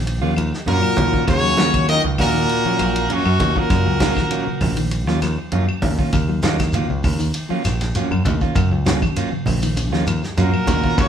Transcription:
Already playing: A#1 D#3
0.06 muted clean electric guitar stroke, ride bell
0.22 D#2 F3 F#3 A#3 C#4 F4
0.36 D#2 F3, muted clean electric guitar stroke, ride bell, claves
0.53 muted clean electric guitar stroke, snare
0.66 F#2 A#2 F#3 A#3 C#4 F4 F#4 A#4, ride bell, high conga
0.82 F#3, muted clean electric guitar stroke, claves
0.97 D#2, kick, ride bell, high conga, low conga
1.12 D#3 A#3 C#4 F4, kick
1.27 D#2 C#3 F#4 C#5, kick, snare, ride bell, claves
1.43 F#3, muted clean electric guitar stroke
1.57 D#2 F#3 A#3 C#4 F4, snare, ride bell, high conga
1.73 D#3, muted clean electric guitar stroke, kick, ride bell, claves
1.87 D#3 F#3 C#4 F4 A#4 D#5, muted clean electric guitar stroke, ride bell
2.04 C#2 C#3, muted clean electric guitar stroke
2.18 D#2 A#2 F#4 A#4, kick, open hi-hat, high conga, low conga, claves
2.33 D#3, muted clean electric guitar stroke
2.49 muted clean electric guitar stroke, ride bell
2.65 F3 F#3 A#3 C#4 F4, muted picked electric bass stroke
2.79 A#1 F#3, muted clean electric guitar stroke, ride bell, claves
2.96 muted clean electric guitar stroke, ride bell
3.09 F#2 F#3 A#3 C#4 F4, ride bell, high conga
3.13 F#4
3.25 F#2 F#3, muted clean electric guitar stroke, claves
3.40 D#2, kick, ride bell, high conga, low conga
3.55 A#2 D#3 A#3 C#4 F4 F#4 A#4, kick
3.70 F#2 C#3, kick, snare, ride bell, claves
3.86 C#2 F#3, muted clean electric guitar stroke
4.00 F#3 A#3 C#4 F4, kick, snare, ride bell, high conga
4.16 D#3, muted clean electric guitar stroke, kick, snare, high conga, claves
4.30 F#3 A#3 C#4 F4, ride bell
4.46 C#3, muted clean electric guitar stroke, muted picked electric bass stroke
4.60 A#1, kick, open hi-hat, high conga, low conga, claves
4.76 D#3, muted clean electric guitar stroke, ride bell
4.91 muted clean electric guitar stroke, ride bell
5.07 D#2 F3 F#3 A#3 C#4 F4, snare
5.21 D#2 F3, snare, ride bell, claves
5.38 muted clean electric guitar stroke
5.52 F#2 F#3 A#3 C#4 F4, ride bell, high conga
5.68 F#3, muted clean electric guitar stroke, claves
5.82 D#2, kick, open hi-hat, high conga, low conga
5.99 D#3 A#3 C#4 F4, kick
6.12 D#2 C#3, kick, ride bell, claves, shekere
6.29 F#3, muted clean electric guitar stroke
6.43 D#2 F#3 A#3 C#4 F4, snare, ride bell, high conga, shekere
6.58 D#3, muted clean electric guitar stroke, kick, snare, ride bell, claves, shekere
6.72 F#3 A#3 F4, muted clean electric guitar stroke, ride bell, low conga, shekere
6.88 C#2 C#3, muted clean electric guitar stroke
7.03 D#2, kick, open hi-hat, high conga, low conga, claves, shekere
7.19 D#3, muted clean electric guitar stroke, shekere
7.34 muted clean electric guitar stroke, ride bell, shekere
7.49 F3 F#3 A#3 C#4 F4, muted picked electric bass stroke
7.65 A#1, muted clean electric guitar stroke, snare, ride bell, claves, shekere
7.80 muted clean electric guitar stroke, snare, ride bell, shekere
7.95 F#3 A#3 C#4 F4, ride bell, high conga, shekere
8.11 F#2 F#3, muted clean electric guitar stroke, high conga, claves
8.25 D#2, kick, ride bell, high conga, low conga, shekere
8.41 D#3 A#3 C#4 F4, kick, shekere
8.55 F#2 C#3, kick, ride bell, claves, shekere
8.71 C#2 F#3, muted clean electric guitar stroke
8.86 F#3 A#3 C#4 F4, snare, ride bell, high conga, shekere
9.02 D#3, muted clean electric guitar stroke, kick, high conga, claves, shekere
9.16 F#3 A#3 C#4 F4, ride bell, shekere
9.32 C#3, muted picked electric bass stroke, muted clean electric guitar stroke
9.46 A#1, kick, open hi-hat, high conga, low conga, claves, shekere
9.62 D#3, muted clean electric guitar stroke, ride bell, shekere
9.76 muted clean electric guitar stroke, ride bell, high conga, shekere
9.92 D#2 F3 F#3 A#3 C#4 F4, snare
10.07 D#2 F3, muted clean electric guitar stroke, ride bell, claves, shekere
10.23 muted clean electric guitar stroke, snare, shekere
10.37 F#2 A#2 F#3 A#3 C#4 F4 F#4 A#4, ride bell, high conga, shekere
10.53 F#3, muted clean electric guitar stroke, claves
10.67 D#2, kick, ride bell, high conga, low conga, shekere
10.83 D#3 A#3 C#4 F4, kick, shekere
10.97 D#2 C#3 F#4 C#5, kick, ride bell, claves, shekere

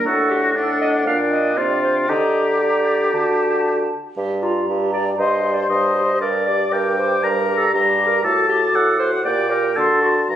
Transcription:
0.05 A2 D4 F#4 A4 F#5
0.30 G4
0.55 D4 A4 F#5
0.81 D#5
1.06 A#2 D4 F5 G5
1.31 D#5
1.56 C3 D4 F4 D5 G5
1.83 C5
2.09 D3 G4 D#5 A#5
2.61 G4 D5 A#5
3.13 D3 F#4 A5
4.16 G2 G4
4.42 F4 G4 A#5
4.68 G2 G4
4.93 G4 D5 A#5
5.19 G2 G4 C5 D#5 C6
5.44 G4 C6
5.53 D5
5.69 G2 C5 D#5
5.95 G4 C6
6.04 C5
6.21 G2 A#4 D5
6.47 G4 D5 D6
6.72 G2 A#4 G5
6.98 G4 C5 D6
7.24 G2 A#4 A#5
7.49 G4 D6
7.57 A4
7.73 G2 G4 A#5
7.99 G4 D6
8.07 A#4
8.24 A2 F#4 A4 A5 D6
8.49 F#4 G4 D6
8.74 A2 A4 F#5
8.99 F#4 C5 D6
9.24 A#2 G4 D5 G5 D6
9.50 G4 A#4 D6
9.76 D3 F#4 A4 A5 C6
10.02 F#4 C6
10.28 G2 F#4 A#5

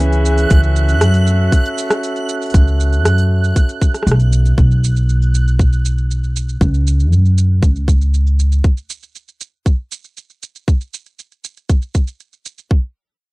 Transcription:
Already playing: C#2 C#3 E3 B3 C#4 G#4 B4 E5 F#6
0.00 C#4, shaker
0.12 open hi-hat, shaker
0.25 shaker
0.38 open hi-hat, shaker
0.50 C#2 F#4 A4, kick, open hi-hat, shaker
0.63 shaker
0.76 shaker
0.89 open hi-hat, shaker
1.01 F#2, cross-stick, open hi-hat, shaker
1.14 open hi-hat, shaker
1.27 shaker
1.52 kick, open hi-hat, shaker
1.65 shaker
1.78 shaker
1.90 cross-stick, open hi-hat, shaker
2.03 open hi-hat, shaker
2.16 open hi-hat, shaker
2.29 shaker
2.42 open hi-hat, shaker
2.46 open hi-hat
2.50 open hi-hat
2.54 C#2, kick, open hi-hat, shaker
2.68 shaker
2.80 shaker
2.93 open hi-hat, shaker
3.05 F#2, cross-stick, open hi-hat, shaker
3.18 open hi-hat, shaker
3.44 shaker
3.56 kick, open hi-hat, shaker
3.69 open hi-hat, shaker
3.81 kick, shaker
3.94 cross-stick, open hi-hat, shaker
4.03 cross-stick
4.07 B1, open hi-hat, shaker
4.11 cross-stick
4.20 open hi-hat, shaker
4.32 shaker
4.45 open hi-hat, shaker
4.58 B1, kick, shaker
4.71 shaker
4.84 shaker
4.96 shaker
5.09 shaker
5.22 shaker
5.35 shaker
5.48 shaker
5.59 kick, shaker
5.73 shaker
5.85 shaker
5.98 shaker
6.11 shaker
6.24 shaker
6.36 shaker
6.49 shaker
6.61 C#2, kick, shaker
6.74 shaker
6.87 shaker
7.00 shaker
7.12 F#2, shaker
7.25 shaker
7.38 shaker
7.62 C#2, kick, shaker
7.76 shaker
7.88 kick, shaker
8.01 shaker
8.14 shaker
8.27 shaker
8.39 shaker
8.52 shaker
8.64 kick, shaker
8.77 shaker
8.90 shaker
9.03 shaker
9.15 shaker
9.28 shaker
9.41 shaker
9.66 kick, shaker
9.92 shaker
10.04 shaker
10.17 shaker
10.30 shaker
10.43 shaker
10.56 shaker
10.68 kick, shaker
10.81 shaker
10.94 shaker
11.06 shaker
11.19 shaker
11.32 shaker
11.44 shaker
11.57 shaker
11.69 kick, shaker
11.82 shaker
11.94 kick, shaker
12.07 shaker
12.20 shaker
12.33 shaker
12.45 shaker
12.58 shaker
12.71 kick

